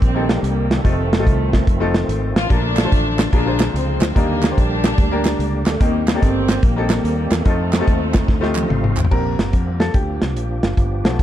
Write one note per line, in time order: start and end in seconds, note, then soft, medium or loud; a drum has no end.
0.00 0.37 A#1 loud
0.00 0.82 D#3 medium
0.00 0.70 D#3 medium
0.00 0.82 G3 medium
0.00 0.81 G3 medium
0.00 0.81 A#3 medium
0.00 0.82 C4 medium
0.00 0.41 C4 medium
0.00 0.82 G4 medium
0.00 kick loud
0.00 closed hi-hat medium
0.14 0.65 A#3 medium
0.14 0.65 C4 medium
0.14 0.65 D#4 medium
0.14 0.66 G4 medium
0.14 0.66 A4 medium
0.29 snare loud
0.29 closed hi-hat medium
0.43 0.78 C2 loud
0.43 0.69 A#3 medium
0.43 closed hi-hat medium
0.71 1.25 C3 medium
0.71 1.25 D#3 medium
0.71 1.25 A3 loud
0.71 snare loud
0.71 closed hi-hat medium
0.84 1.27 F1 loud
0.84 2.47 D#3 medium
0.84 2.48 F3 medium
0.84 1.11 A3 medium
0.84 2.47 A3 medium
0.84 1.12 C4 medium
0.84 2.47 C4 medium
0.84 1.12 D#4 medium
0.84 1.12 F4 medium
0.84 2.47 F4 medium
0.84 1.12 A4 medium
0.84 kick loud
0.84 closed hi-hat medium
1.13 snare loud
1.13 closed hi-hat medium
1.18 1.60 A3 medium
1.18 1.60 C4 medium
1.18 1.60 D#4 medium
1.18 1.60 F4 medium
1.18 1.60 A4 medium
1.26 1.61 C2 medium
1.26 2.05 C3 medium
1.26 2.05 D#3 medium
1.26 2.05 A3 loud
1.26 kick medium
1.26 closed hi-hat medium
1.53 kick medium
1.53 snare loud
1.53 closed hi-hat medium
1.67 2.03 F1 loud
1.67 kick loud
1.67 closed hi-hat medium
1.80 2.30 A3 medium
1.80 2.31 C4 medium
1.80 2.31 D#4 medium
1.80 2.31 F4 medium
1.80 2.31 A4 loud
1.94 snare loud
1.94 closed hi-hat medium
2.09 2.32 G#1 loud
2.09 closed hi-hat medium
2.36 2.48 A1 medium
2.36 2.50 F4 loud
2.36 snare loud
2.36 closed hi-hat medium
2.49 2.85 A#1 loud
2.49 3.15 A#2 medium
2.49 3.31 D3 medium
2.49 3.29 F3 medium
2.49 3.31 F3 medium
2.49 3.31 A3 soft
2.49 3.29 A3 medium
2.49 2.77 A#3 medium
2.49 2.77 D4 medium
2.49 3.31 D4 medium
2.49 3.32 D4 loud
2.49 2.77 F4 medium
2.49 3.31 F4 medium
2.49 2.77 A4 medium
2.49 2.77 A#4 medium
2.49 kick loud
2.49 closed hi-hat medium
2.77 snare loud
2.77 clap medium
2.77 closed hi-hat medium
2.83 3.25 A3 medium
2.83 3.25 D4 medium
2.83 3.25 F4 medium
2.83 3.25 A4 medium
2.83 3.26 C5 medium
2.92 3.27 A1 medium
2.92 kick loud
2.92 closed hi-hat medium
3.19 snare loud
3.19 clap medium
3.19 closed hi-hat medium
3.32 3.68 A#1 loud
3.32 3.98 A#2 medium
3.32 4.14 D3 medium
3.32 3.73 F3 medium
3.32 4.14 F3 medium
3.32 3.74 G#3 medium
3.32 4.14 G#3 medium
3.32 3.43 A#3 medium
3.32 4.14 A#3 medium
3.32 3.44 D4 medium
3.32 3.71 D4 loud
3.32 3.44 F4 medium
3.32 4.14 F4 medium
3.32 3.44 G#4 medium
3.32 3.44 A#4 medium
3.32 kick loud
3.32 closed hi-hat medium
3.45 3.96 A#3 medium
3.45 3.96 D4 medium
3.45 3.96 F4 medium
3.45 3.96 G#4 medium
3.45 3.97 C5 medium
3.60 snare loud
3.60 clap loud
3.60 closed hi-hat medium
3.74 3.97 C#2 loud
3.74 4.13 F3 medium
3.74 4.13 G#3 medium
3.74 4.16 C4 medium
3.74 closed hi-hat medium
4.01 4.13 D2 medium
4.01 snare loud
4.01 clap medium
4.01 closed hi-hat medium
4.15 4.51 D#2 loud
4.15 5.78 D3 medium
4.15 4.95 D3 medium
4.15 4.80 G3 medium
4.15 5.78 G3 medium
4.15 4.57 G3 medium
4.15 4.42 A#3 medium
4.15 5.77 A#3 medium
4.15 4.57 A#3 loud
4.15 4.42 D4 medium
4.15 5.78 D4 medium
4.15 4.43 D#4 medium
4.15 5.78 G4 medium
4.15 4.43 G4 medium
4.15 4.43 A#4 medium
4.15 kick loud
4.15 closed hi-hat medium
4.43 snare loud
4.43 clap medium
4.43 closed hi-hat medium
4.50 4.91 A#3 medium
4.50 4.91 D4 medium
4.50 4.92 G4 medium
4.50 4.92 C5 medium
4.58 4.92 A#1 medium
4.58 5.36 G3 medium
4.58 5.36 A#3 medium
4.58 5.40 D4 loud
4.58 kick medium
4.58 closed hi-hat medium
4.84 snare loud
4.84 clap medium
4.84 closed hi-hat medium
4.98 5.33 D2 loud
4.98 kick loud
4.98 closed hi-hat medium
5.11 5.61 A#3 loud
5.11 5.61 D4 medium
5.11 5.62 G4 medium
5.11 5.62 A#4 loud
5.25 snare loud
5.25 clap loud
5.25 closed hi-hat medium
5.39 5.62 C#2 loud
5.39 closed hi-hat medium
5.66 5.78 D2 medium
5.66 5.80 A3 medium
5.66 snare loud
5.66 clap medium
5.66 closed hi-hat medium
5.80 6.16 D#2 loud
5.80 5.88 D3 soft
5.80 6.46 D#3 medium
5.80 6.22 G3 medium
5.80 7.43 G3 medium
5.80 6.07 A#3 medium
5.80 6.07 A#3 loud
5.80 7.43 A#3 medium
5.80 6.08 C4 medium
5.80 7.43 C4 medium
5.80 6.08 D#4 medium
5.80 7.43 G4 medium
5.80 6.08 G4 medium
5.80 6.08 A#4 medium
5.80 kick loud
5.80 closed hi-hat loud
5.86 7.45 D#3 medium
6.08 6.21 A#3 medium
6.08 snare loud
6.08 clap medium
6.08 closed hi-hat medium
6.14 6.56 A#3 medium
6.14 6.56 C4 medium
6.14 6.18 D4 medium
6.14 6.56 G4 medium
6.14 6.57 A4 medium
6.20 6.57 G1 medium
6.20 6.63 G3 medium
6.20 6.64 C4 loud
6.20 6.59 D#4 medium
6.20 kick medium
6.20 closed hi-hat medium
6.49 snare loud
6.49 clap medium
6.49 closed hi-hat medium
6.63 6.98 A#1 loud
6.63 7.42 G3 medium
6.63 7.32 A#3 medium
6.63 kick loud
6.63 closed hi-hat medium
6.76 7.26 A#3 medium
6.76 7.27 C4 medium
6.76 7.27 D#4 medium
6.76 7.27 G4 medium
6.76 7.27 A4 loud
6.90 snare loud
6.90 clap loud
6.90 closed hi-hat medium
7.04 7.28 D#2 loud
7.04 closed hi-hat medium
7.31 7.43 E2 medium
7.31 8.93 C3 medium
7.31 8.97 A3 medium
7.31 8.94 D#4 medium
7.31 snare loud
7.31 clap medium
7.31 closed hi-hat medium
7.45 7.81 F2 loud
7.45 9.08 F3 medium
7.45 7.73 A3 medium
7.45 9.08 A3 medium
7.45 7.73 C4 medium
7.45 9.09 C4 medium
7.45 7.73 D#4 medium
7.45 9.08 D#4 medium
7.45 7.53 E4 medium
7.45 7.73 F4 medium
7.45 7.73 A4 medium
7.45 kick loud
7.45 closed hi-hat medium
7.51 9.11 F4 medium
7.73 snare loud
7.73 clap medium
7.73 closed hi-hat medium
7.79 8.21 A3 medium
7.79 8.21 C4 medium
7.79 8.21 D#4 medium
7.79 8.22 F4 medium
7.79 8.22 A4 loud
7.87 8.23 D#2 medium
7.87 kick medium
7.87 closed hi-hat medium
8.14 kick loud
8.14 snare loud
8.14 clap medium
8.14 closed hi-hat medium
8.28 8.63 D2 loud
8.28 kick loud
8.28 snare medium
8.41 8.91 A3 loud
8.41 8.92 C4 medium
8.41 8.92 D#4 medium
8.41 8.92 F4 medium
8.41 8.92 G4 medium
8.41 snare medium
8.55 8.63 D5 medium
8.55 clap loud
8.55 high tom medium
8.63 8.69 D#5 medium
8.63 high tom medium
8.69 8.93 G#1 loud
8.69 8.95 F5 medium
8.69 mid tom loud
8.84 mid tom medium
8.97 9.09 A1 medium
8.97 9.10 G5 medium
8.97 clap medium
8.97 floor tom loud
9.05 floor tom loud
9.11 9.34 A#1 loud
9.11 10.73 D3 medium
9.11 10.74 F3 medium
9.11 10.75 G3 medium
9.11 10.73 G3 soft
9.11 10.76 A#3 medium
9.11 10.74 A#3 soft
9.11 9.18 C4 soft
9.11 10.74 C4 medium
9.11 11.23 D4 medium
9.11 11.23 F4 medium
9.11 10.74 G4 medium
9.11 9.82 A#4 loud
9.11 kick medium
9.11 crash medium
9.16 10.76 D4 soft
9.39 9.51 G1 medium
9.39 snare loud
9.39 closed hi-hat medium
9.53 9.88 F2 medium
9.53 kick medium
9.53 closed hi-hat medium
9.80 9.95 A4 medium
9.80 snare loud
9.80 closed hi-hat medium
9.94 10.18 D2 loud
9.94 11.01 G4 medium
9.94 kick loud
9.94 closed hi-hat medium
10.22 10.36 C2 medium
10.22 snare loud
10.22 closed hi-hat medium
10.36 10.59 A#1 loud
10.36 closed hi-hat medium
10.63 10.75 F#1 medium
10.63 snare medium
10.63 closed hi-hat medium
10.77 11.01 G1 medium
10.77 11.23 F3 medium
10.77 11.23 G3 medium
10.77 10.84 A#3 soft
10.77 11.23 B3 medium
10.77 11.23 D4 medium
10.77 11.23 G4 medium
10.77 kick medium
10.77 closed hi-hat medium
10.83 11.23 B3 medium
11.04 11.16 B1 medium
11.04 11.23 F3 medium
11.04 11.23 A3 soft
11.04 11.23 B3 medium
11.04 snare loud
11.04 closed hi-hat medium
11.19 11.23 D2 medium
11.19 kick medium
11.19 closed hi-hat medium